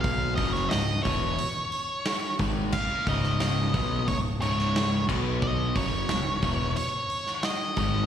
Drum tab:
CC |----------------|x-------------x-|----------------|
HH |o-o-o-o-o-o-o-o-|--o-o-o-o-o-o---|--o-o-o-o-o-o-o-|
SD |---oo-------o---|---oo------oo---|----o------oo---|
BD |o-o---o-------o-|o-o---o-o-----o-|o-o---o-------o-|